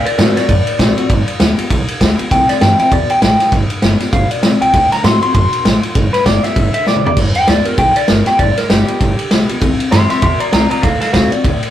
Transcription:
Already playing: steel-string acoustic guitar D3
0.05 clean electric guitar A#4 D5, muted upright bass stroke, ride
0.18 upright bass A2, steel-string acoustic guitar D3 A3 C4 F#4, clean electric guitar A#4 D5, snare, ride
0.36 steel-string acoustic guitar C4 F#4, clean electric guitar A#4 D5, muted upright bass stroke, snare, ride
0.48 upright bass F#2, steel-string acoustic guitar A2, clean electric guitar D5, kick, ride
0.67 muted upright bass stroke, ride
0.78 upright bass A1, steel-string acoustic guitar D3 A3 C4 F#4, kick, snare, ride
0.97 steel-string acoustic guitar C4 F#4, muted upright bass stroke, ride
1.10 upright bass G1, steel-string acoustic guitar G2, kick, ride
1.28 muted upright bass stroke, ride
1.40 upright bass D2, steel-string acoustic guitar D3 G3 B3 G4, snare, ride
1.57 steel-string acoustic guitar B3 G4, muted upright bass stroke, ride
1.70 upright bass B1, steel-string acoustic guitar D3, kick, ride
1.88 muted upright bass stroke, ride
2.01 upright bass D2, steel-string acoustic guitar D3 G3 B3 G4, kick, snare, ride
2.18 steel-string acoustic guitar B3 G4, muted upright bass stroke, ride
2.31 upright bass C2, steel-string acoustic guitar C3, clean electric guitar G5, kick, snare, ride
2.49 clean electric guitar D5, muted upright bass stroke, snare, ride
2.61 upright bass G2, steel-string acoustic guitar E3 G3 C4 E4, clean electric guitar G5, snare, ride
2.79 steel-string acoustic guitar C4 E4, clean electric guitar G5, muted upright bass stroke, ride
2.91 upright bass E2, steel-string acoustic guitar B2, clean electric guitar D5, kick, ride
3.10 clean electric guitar G5, muted upright bass stroke, ride
3.21 upright bass A1, steel-string acoustic guitar A2, clean electric guitar G5, snare, ride
3.40 snare, ride
3.52 upright bass G1, steel-string acoustic guitar G2, kick, snare, ride
3.70 muted upright bass stroke, ride
3.82 upright bass G1, steel-string acoustic guitar D3 G3 B3 G4, snare, ride
4.00 steel-string acoustic guitar B3 G4, muted upright bass stroke, snare, ride
4.13 upright bass G1, steel-string acoustic guitar B2, clean electric guitar F5, kick, ride
4.31 clean electric guitar D5, muted upright bass stroke, ride
4.43 upright bass B1, steel-string acoustic guitar C3, snare, ride
4.61 upright bass C2, clean electric guitar G5, ride
4.74 upright bass D2, steel-string acoustic guitar D3, kick, snare, ride
4.92 clean electric guitar A#5, muted upright bass stroke, snare, ride
5.03 upright bass A2, steel-string acoustic guitar D3 A3 C4 F#4, clean electric guitar C6, snare, ride
5.22 steel-string acoustic guitar C4 F#4, clean electric guitar C6, muted upright bass stroke, ride
5.34 upright bass F#2, steel-string acoustic guitar B2, clean electric guitar C6, kick, ride
5.53 ride
5.65 upright bass A1, steel-string acoustic guitar A2, snare, ride
5.83 muted upright bass stroke, ride
5.95 upright bass G1, steel-string acoustic guitar G2, kick, snare, ride
6.13 clean electric guitar B4, snare, ride
6.25 upright bass G1, steel-string acoustic guitar D3 G3 B3 G4, clean electric guitar D5, kick, snare, ride
6.43 steel-string acoustic guitar B3 G4, clean electric guitar E5, muted upright bass stroke, snare, ride
6.56 upright bass G1, steel-string acoustic guitar D3, kick, ride
6.74 clean electric guitar E5, ride
6.86 upright bass B1, steel-string acoustic guitar D3 G3 B3 G4, clean electric guitar D5, snare
6.96 mid tom
7.04 upright bass C2, steel-string acoustic guitar B3 G4, clean electric guitar D5, floor tom
7.17 upright bass G1, steel-string acoustic guitar G2, kick, crash, ride
7.35 clean electric guitar G5, muted upright bass stroke, ride
7.47 upright bass D2, steel-string acoustic guitar D3 G3 B3 G4, clean electric guitar D5, snare, ride
7.65 steel-string acoustic guitar B3 G4, clean electric guitar A#4, ride
7.78 upright bass B1, steel-string acoustic guitar D3, clean electric guitar G5, kick, ride
7.96 clean electric guitar D5, muted upright bass stroke, ride
8.08 upright bass G1, steel-string acoustic guitar D3 G3 B3 G4, clean electric guitar A#4, snare, ride
8.26 steel-string acoustic guitar B3 G4, clean electric guitar G5, muted upright bass stroke, snare, ride
8.39 upright bass G1, steel-string acoustic guitar G2, clean electric guitar D5, kick, ride
8.57 clean electric guitar A#4, snare, ride
8.70 upright bass G1, steel-string acoustic guitar D3 G3 B3 G4, clean electric guitar G4, snare, ride
8.88 steel-string acoustic guitar B3 G4, muted upright bass stroke, ride
9.01 upright bass G1, steel-string acoustic guitar D3, kick, ride
9.19 muted upright bass stroke, ride
9.31 upright bass B1, steel-string acoustic guitar D3 G3 B3 G4, snare, ride
9.49 upright bass C2, steel-string acoustic guitar B3 G4, ride
9.61 upright bass C2, steel-string acoustic guitar C3, kick, ride
9.80 muted upright bass stroke, ride
9.91 upright bass G2, steel-string acoustic guitar E3 G3 C4 E4, clean electric guitar E5 C6, snare, ride
10.10 steel-string acoustic guitar C4 E4, clean electric guitar E5 C6, muted upright bass stroke, snare, ride
10.22 upright bass E2, steel-string acoustic guitar B2, clean electric guitar E5 C6, kick, ride
10.40 clean electric guitar D5 A#5, muted upright bass stroke, ride
10.53 upright bass C2, steel-string acoustic guitar C3, clean electric guitar D5 A#5, snare, ride
10.70 clean electric guitar D5 A#5, muted upright bass stroke, ride
10.82 upright bass D2, steel-string acoustic guitar D3, clean electric guitar A4 F5, kick, snare, ride
11.01 clean electric guitar A4 F5, muted upright bass stroke, snare, ride
11.13 upright bass D2, steel-string acoustic guitar D3 A3 C4 F#4, clean electric guitar A4 F5, kick, snare, ride
11.31 steel-string acoustic guitar C4 F#4, clean electric guitar D5, muted upright bass stroke, ride
11.44 upright bass D2, steel-string acoustic guitar A2, kick, ride
11.62 muted upright bass stroke, ride

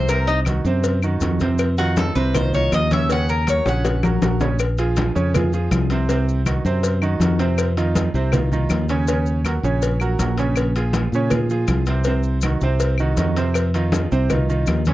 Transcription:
Already playing: fingered electric bass C2
0.08 grand piano C3 C4 C5, cuban tres A#4, cowbell, high conga, maracas
0.27 cuban tres D#4, high conga, maracas
0.45 grand piano D#3 D#4 F#4, cowbell, high conga, claves, maracas
0.65 fingered electric bass F#2, grand piano C3 C4 C5, high conga, maracas
0.84 cowbell, high conga, maracas
1.03 grand piano D#3 D#4 F#4, high conga, claves, maracas
1.20 fingered electric bass F2, grand piano D#3 D#4 F#4, cowbell, high conga, maracas
1.40 grand piano C3 C4 C5, cowbell, high conga, maracas
1.58 cowbell, high conga, claves, maracas
1.78 grand piano D#3 D#4 F4, cuban tres F#4, cowbell, high conga, maracas
1.97 cuban tres A4, cowbell, high conga, maracas
2.15 fingered electric bass C2, grand piano C3 C4 C5, cuban tres B4, maracas
2.34 grand piano D#3 D#4 F4, cuban tres C5, cowbell, high conga, low conga, claves, maracas
2.53 grand piano D#3 D#4 F4, cuban tres C#5, high conga, low conga, maracas
2.72 fingered electric bass D#2, cuban tres D#5, cowbell, high conga, claves, maracas
2.91 grand piano C#3 C#4 C#5, cuban tres E5, cowbell, high conga, maracas
3.10 grand piano C#3 C#4 C#5, cuban tres F#5, cowbell, high conga, maracas
3.29 cuban tres A#4, high conga, maracas
3.47 grand piano F#3 F#4 A#4, cuban tres C#5, cowbell, high conga, claves, maracas
3.66 fingered electric bass A#1, grand piano C#3 C#4 C#5, cuban tres F#5, high bongo, high conga, maracas
3.85 cowbell, high bongo, high conga, maracas
4.03 grand piano F#3 F#4 A#4, high bongo, high conga, claves, maracas
4.22 fingered electric bass A#1, grand piano F#3 F#4 A#4, cowbell, low bongo, high conga, maracas
4.40 grand piano C#3 C#4 C#5, cowbell, low bongo, low conga, maracas
4.59 cowbell, claves, maracas
4.78 grand piano F3 F4 G#4, cowbell, high conga, maracas
4.96 cowbell, high conga, maracas
5.15 fingered electric bass F2, grand piano C#3 C#4 C#5, maracas
5.34 grand piano F3 F4 G#4, cowbell, high conga, low conga, claves, maracas
5.53 grand piano F3 F4 G#4, high conga, maracas
5.71 fingered electric bass C2, cowbell, high conga, claves, maracas
5.90 grand piano C3 C4 C5, cowbell, maracas
6.09 grand piano C3 C4 C5, cowbell, high conga, maracas
6.28 high conga, maracas
6.46 grand piano D#3 D#4 F#4, cowbell, high conga, claves, maracas
6.65 fingered electric bass F#2, grand piano C3 C4 C5, high conga, maracas
6.83 cowbell, high conga, maracas
7.02 grand piano D#3 D#4 F#4, high conga, claves, maracas
7.20 fingered electric bass F2, grand piano D#3 D#4 F#4, cowbell, high conga, maracas
7.39 grand piano C3 C4 C5, cowbell, maracas
7.58 cowbell, high conga, claves, maracas
7.76 grand piano D#3 D#4 F4, cowbell, high conga, maracas
7.95 cowbell, high conga, maracas
8.14 fingered electric bass C2, grand piano C3 C4 C5, maracas
8.32 grand piano D#3 D#4 F4, cowbell, high conga, low conga, claves, maracas
8.52 grand piano D#3 D#4 F4, high conga, low conga, maracas
8.70 fingered electric bass D#2, cowbell, high conga, claves, maracas
8.89 grand piano C#3 C#4 C#5, cowbell, maracas
9.08 grand piano C#3 C#4 C#5, cowbell, high conga, maracas
9.26 high conga, maracas
9.44 grand piano F#3 F#4 A#4, cowbell, high conga, claves, maracas
9.63 fingered electric bass A#1, grand piano C#3 C#4 C#5, high conga, maracas
9.82 cowbell, high conga, maracas
10.00 grand piano F#3 F#4 A#4, high conga, claves, maracas
10.19 fingered electric bass A#1, grand piano F#3 F#4 A#4, cowbell, high conga, maracas
10.38 grand piano C#3 C#4 C#5, cowbell, maracas
10.56 cowbell, high conga, claves, maracas
10.75 grand piano F3 F4 G#4, cowbell, high conga, maracas
10.93 cowbell, high conga, maracas
11.12 fingered electric bass A#2, grand piano C#3 C#4 C#5, maracas
11.30 grand piano F3 F4 G#4, cowbell, high conga, low conga, claves, maracas
11.50 grand piano F3 F4 G#4, high conga, maracas
11.68 fingered electric bass C2, cowbell, high conga, claves, maracas
11.86 grand piano C3 C4 C5, cowbell, maracas
12.04 grand piano C3 C4 C5, cowbell, high conga, maracas
12.23 high conga, maracas
12.41 grand piano D#3 D#4 F#4, cowbell, high conga, claves, maracas
12.61 fingered electric bass C2, grand piano C3 C4 C5, high conga, maracas
12.80 cowbell, high conga, maracas
12.98 grand piano D#3 D#4 F#4, high conga, claves, maracas
13.17 fingered electric bass F2, grand piano D#3 D#4 F#4, cowbell, high conga, maracas
13.36 grand piano C3 C4 C5, cowbell, maracas
13.54 cowbell, high conga, claves, maracas
13.74 grand piano D#3 D#4 F4, cowbell, high conga, maracas
13.92 cowbell, high conga, maracas
14.12 fingered electric bass C2, grand piano C3 C4 C5, maracas
14.30 grand piano D#3 D#4 F4, cowbell, high conga, low conga, claves, maracas
14.49 grand piano D#3 D#4 F4, high conga, maracas
14.66 fingered electric bass D#2, cowbell, high conga, claves, maracas
14.85 grand piano C#3 C#4 C#5, cowbell, high conga, maracas

